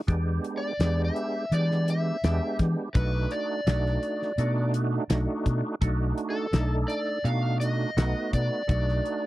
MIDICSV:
0, 0, Header, 1, 5, 480
1, 0, Start_track
1, 0, Tempo, 717703
1, 51, Time_signature, 4, 2, 24, 8
1, 6196, End_track
2, 0, Start_track
2, 0, Title_t, "Electric slide guitar"
2, 0, Program_c, 0, 29
2, 385, Note_on_c, 0, 74, 77
2, 696, Note_off_c, 0, 74, 0
2, 699, Note_on_c, 0, 76, 81
2, 1025, Note_off_c, 0, 76, 0
2, 1027, Note_on_c, 0, 74, 85
2, 1266, Note_off_c, 0, 74, 0
2, 1271, Note_on_c, 0, 76, 81
2, 1714, Note_off_c, 0, 76, 0
2, 1969, Note_on_c, 0, 71, 90
2, 2217, Note_on_c, 0, 74, 85
2, 2218, Note_off_c, 0, 71, 0
2, 3148, Note_off_c, 0, 74, 0
2, 4215, Note_on_c, 0, 69, 77
2, 4512, Note_off_c, 0, 69, 0
2, 4601, Note_on_c, 0, 74, 85
2, 4848, Note_on_c, 0, 77, 106
2, 4855, Note_off_c, 0, 74, 0
2, 5081, Note_off_c, 0, 77, 0
2, 5084, Note_on_c, 0, 75, 94
2, 5576, Note_off_c, 0, 75, 0
2, 5579, Note_on_c, 0, 74, 84
2, 6196, Note_off_c, 0, 74, 0
2, 6196, End_track
3, 0, Start_track
3, 0, Title_t, "Tonewheel organ"
3, 0, Program_c, 1, 16
3, 50, Note_on_c, 1, 56, 76
3, 51, Note_on_c, 1, 59, 68
3, 53, Note_on_c, 1, 62, 68
3, 54, Note_on_c, 1, 67, 85
3, 489, Note_off_c, 1, 56, 0
3, 489, Note_off_c, 1, 59, 0
3, 490, Note_off_c, 1, 62, 0
3, 491, Note_off_c, 1, 67, 0
3, 536, Note_on_c, 1, 56, 70
3, 537, Note_on_c, 1, 59, 63
3, 538, Note_on_c, 1, 67, 82
3, 539, Note_on_c, 1, 62, 72
3, 972, Note_off_c, 1, 56, 0
3, 972, Note_off_c, 1, 59, 0
3, 973, Note_off_c, 1, 62, 0
3, 973, Note_off_c, 1, 67, 0
3, 1017, Note_on_c, 1, 62, 63
3, 1019, Note_on_c, 1, 59, 72
3, 1020, Note_on_c, 1, 56, 75
3, 1022, Note_on_c, 1, 67, 74
3, 1453, Note_off_c, 1, 59, 0
3, 1453, Note_off_c, 1, 62, 0
3, 1454, Note_off_c, 1, 56, 0
3, 1455, Note_off_c, 1, 67, 0
3, 1497, Note_on_c, 1, 56, 73
3, 1501, Note_on_c, 1, 62, 65
3, 1502, Note_on_c, 1, 59, 69
3, 1503, Note_on_c, 1, 67, 78
3, 1932, Note_off_c, 1, 56, 0
3, 1935, Note_off_c, 1, 59, 0
3, 1935, Note_off_c, 1, 62, 0
3, 1935, Note_off_c, 1, 67, 0
3, 1974, Note_on_c, 1, 62, 66
3, 1977, Note_on_c, 1, 57, 66
3, 1977, Note_on_c, 1, 63, 66
3, 1977, Note_on_c, 1, 66, 77
3, 2411, Note_off_c, 1, 62, 0
3, 2412, Note_off_c, 1, 57, 0
3, 2412, Note_off_c, 1, 63, 0
3, 2412, Note_off_c, 1, 66, 0
3, 2451, Note_on_c, 1, 57, 65
3, 2453, Note_on_c, 1, 63, 60
3, 2455, Note_on_c, 1, 62, 63
3, 2459, Note_on_c, 1, 66, 74
3, 2890, Note_off_c, 1, 57, 0
3, 2891, Note_off_c, 1, 63, 0
3, 2892, Note_off_c, 1, 62, 0
3, 2894, Note_off_c, 1, 66, 0
3, 2934, Note_on_c, 1, 62, 79
3, 2935, Note_on_c, 1, 57, 93
3, 2935, Note_on_c, 1, 63, 84
3, 2936, Note_on_c, 1, 66, 103
3, 3371, Note_off_c, 1, 62, 0
3, 3372, Note_off_c, 1, 57, 0
3, 3372, Note_off_c, 1, 63, 0
3, 3372, Note_off_c, 1, 66, 0
3, 3406, Note_on_c, 1, 62, 79
3, 3408, Note_on_c, 1, 57, 74
3, 3409, Note_on_c, 1, 63, 70
3, 3409, Note_on_c, 1, 66, 95
3, 3848, Note_off_c, 1, 57, 0
3, 3848, Note_off_c, 1, 62, 0
3, 3849, Note_off_c, 1, 63, 0
3, 3849, Note_off_c, 1, 66, 0
3, 3885, Note_on_c, 1, 57, 77
3, 3888, Note_on_c, 1, 63, 76
3, 3888, Note_on_c, 1, 66, 96
3, 3889, Note_on_c, 1, 62, 78
3, 4327, Note_off_c, 1, 57, 0
3, 4329, Note_off_c, 1, 62, 0
3, 4329, Note_off_c, 1, 63, 0
3, 4329, Note_off_c, 1, 66, 0
3, 4363, Note_on_c, 1, 57, 73
3, 4366, Note_on_c, 1, 62, 64
3, 4368, Note_on_c, 1, 69, 77
3, 4370, Note_on_c, 1, 63, 71
3, 4806, Note_off_c, 1, 57, 0
3, 4808, Note_off_c, 1, 62, 0
3, 4809, Note_off_c, 1, 69, 0
3, 4810, Note_off_c, 1, 63, 0
3, 4842, Note_on_c, 1, 62, 72
3, 4842, Note_on_c, 1, 63, 75
3, 4843, Note_on_c, 1, 57, 79
3, 4844, Note_on_c, 1, 66, 83
3, 5286, Note_off_c, 1, 57, 0
3, 5286, Note_off_c, 1, 62, 0
3, 5286, Note_off_c, 1, 63, 0
3, 5287, Note_off_c, 1, 66, 0
3, 5329, Note_on_c, 1, 57, 78
3, 5330, Note_on_c, 1, 66, 75
3, 5331, Note_on_c, 1, 63, 66
3, 5332, Note_on_c, 1, 59, 65
3, 5770, Note_off_c, 1, 57, 0
3, 5770, Note_off_c, 1, 63, 0
3, 5770, Note_off_c, 1, 66, 0
3, 5771, Note_off_c, 1, 59, 0
3, 5802, Note_on_c, 1, 57, 67
3, 5802, Note_on_c, 1, 62, 65
3, 5804, Note_on_c, 1, 63, 66
3, 5805, Note_on_c, 1, 66, 79
3, 6196, Note_off_c, 1, 57, 0
3, 6196, Note_off_c, 1, 62, 0
3, 6196, Note_off_c, 1, 63, 0
3, 6196, Note_off_c, 1, 66, 0
3, 6196, End_track
4, 0, Start_track
4, 0, Title_t, "Fingered electric bass"
4, 0, Program_c, 2, 33
4, 56, Note_on_c, 2, 40, 90
4, 252, Note_off_c, 2, 40, 0
4, 531, Note_on_c, 2, 40, 85
4, 730, Note_off_c, 2, 40, 0
4, 1014, Note_on_c, 2, 52, 89
4, 1409, Note_off_c, 2, 52, 0
4, 1495, Note_on_c, 2, 40, 83
4, 1596, Note_off_c, 2, 40, 0
4, 1734, Note_on_c, 2, 52, 72
4, 1835, Note_off_c, 2, 52, 0
4, 1975, Note_on_c, 2, 35, 89
4, 2172, Note_off_c, 2, 35, 0
4, 2452, Note_on_c, 2, 35, 81
4, 2650, Note_off_c, 2, 35, 0
4, 2928, Note_on_c, 2, 47, 92
4, 3327, Note_off_c, 2, 47, 0
4, 3410, Note_on_c, 2, 35, 93
4, 3513, Note_off_c, 2, 35, 0
4, 3649, Note_on_c, 2, 47, 74
4, 3752, Note_off_c, 2, 47, 0
4, 3890, Note_on_c, 2, 35, 98
4, 4089, Note_off_c, 2, 35, 0
4, 4366, Note_on_c, 2, 35, 93
4, 4567, Note_off_c, 2, 35, 0
4, 4844, Note_on_c, 2, 47, 85
4, 5245, Note_off_c, 2, 47, 0
4, 5328, Note_on_c, 2, 35, 80
4, 5433, Note_off_c, 2, 35, 0
4, 5571, Note_on_c, 2, 47, 80
4, 5675, Note_off_c, 2, 47, 0
4, 5811, Note_on_c, 2, 35, 90
4, 6011, Note_off_c, 2, 35, 0
4, 6196, End_track
5, 0, Start_track
5, 0, Title_t, "Drums"
5, 54, Note_on_c, 9, 42, 70
5, 55, Note_on_c, 9, 36, 92
5, 121, Note_off_c, 9, 42, 0
5, 122, Note_off_c, 9, 36, 0
5, 297, Note_on_c, 9, 42, 61
5, 364, Note_off_c, 9, 42, 0
5, 535, Note_on_c, 9, 42, 75
5, 540, Note_on_c, 9, 38, 96
5, 602, Note_off_c, 9, 42, 0
5, 607, Note_off_c, 9, 38, 0
5, 777, Note_on_c, 9, 42, 51
5, 844, Note_off_c, 9, 42, 0
5, 1017, Note_on_c, 9, 42, 73
5, 1084, Note_off_c, 9, 42, 0
5, 1145, Note_on_c, 9, 38, 31
5, 1212, Note_off_c, 9, 38, 0
5, 1257, Note_on_c, 9, 42, 61
5, 1324, Note_off_c, 9, 42, 0
5, 1497, Note_on_c, 9, 42, 67
5, 1501, Note_on_c, 9, 38, 99
5, 1564, Note_off_c, 9, 42, 0
5, 1568, Note_off_c, 9, 38, 0
5, 1733, Note_on_c, 9, 42, 47
5, 1735, Note_on_c, 9, 36, 75
5, 1737, Note_on_c, 9, 38, 27
5, 1800, Note_off_c, 9, 42, 0
5, 1801, Note_off_c, 9, 36, 0
5, 1804, Note_off_c, 9, 38, 0
5, 1972, Note_on_c, 9, 42, 68
5, 1974, Note_on_c, 9, 36, 94
5, 2039, Note_off_c, 9, 42, 0
5, 2041, Note_off_c, 9, 36, 0
5, 2212, Note_on_c, 9, 42, 58
5, 2279, Note_off_c, 9, 42, 0
5, 2454, Note_on_c, 9, 42, 71
5, 2459, Note_on_c, 9, 38, 95
5, 2521, Note_off_c, 9, 42, 0
5, 2526, Note_off_c, 9, 38, 0
5, 2583, Note_on_c, 9, 38, 31
5, 2650, Note_off_c, 9, 38, 0
5, 2694, Note_on_c, 9, 42, 53
5, 2761, Note_off_c, 9, 42, 0
5, 2823, Note_on_c, 9, 38, 33
5, 2890, Note_off_c, 9, 38, 0
5, 2931, Note_on_c, 9, 42, 72
5, 2998, Note_off_c, 9, 42, 0
5, 3170, Note_on_c, 9, 42, 62
5, 3236, Note_off_c, 9, 42, 0
5, 3410, Note_on_c, 9, 42, 79
5, 3414, Note_on_c, 9, 38, 108
5, 3477, Note_off_c, 9, 42, 0
5, 3481, Note_off_c, 9, 38, 0
5, 3651, Note_on_c, 9, 36, 71
5, 3652, Note_on_c, 9, 42, 53
5, 3718, Note_off_c, 9, 36, 0
5, 3719, Note_off_c, 9, 42, 0
5, 3890, Note_on_c, 9, 36, 86
5, 3890, Note_on_c, 9, 42, 76
5, 3957, Note_off_c, 9, 36, 0
5, 3957, Note_off_c, 9, 42, 0
5, 4131, Note_on_c, 9, 42, 61
5, 4198, Note_off_c, 9, 42, 0
5, 4368, Note_on_c, 9, 42, 79
5, 4373, Note_on_c, 9, 38, 101
5, 4435, Note_off_c, 9, 42, 0
5, 4440, Note_off_c, 9, 38, 0
5, 4611, Note_on_c, 9, 42, 60
5, 4678, Note_off_c, 9, 42, 0
5, 4850, Note_on_c, 9, 42, 70
5, 4916, Note_off_c, 9, 42, 0
5, 5091, Note_on_c, 9, 42, 66
5, 5158, Note_off_c, 9, 42, 0
5, 5335, Note_on_c, 9, 42, 83
5, 5340, Note_on_c, 9, 38, 101
5, 5402, Note_off_c, 9, 42, 0
5, 5406, Note_off_c, 9, 38, 0
5, 5573, Note_on_c, 9, 36, 73
5, 5574, Note_on_c, 9, 42, 49
5, 5639, Note_off_c, 9, 36, 0
5, 5641, Note_off_c, 9, 42, 0
5, 5811, Note_on_c, 9, 42, 64
5, 5812, Note_on_c, 9, 36, 93
5, 5878, Note_off_c, 9, 42, 0
5, 5879, Note_off_c, 9, 36, 0
5, 5943, Note_on_c, 9, 38, 32
5, 6010, Note_off_c, 9, 38, 0
5, 6057, Note_on_c, 9, 42, 51
5, 6123, Note_off_c, 9, 42, 0
5, 6196, End_track
0, 0, End_of_file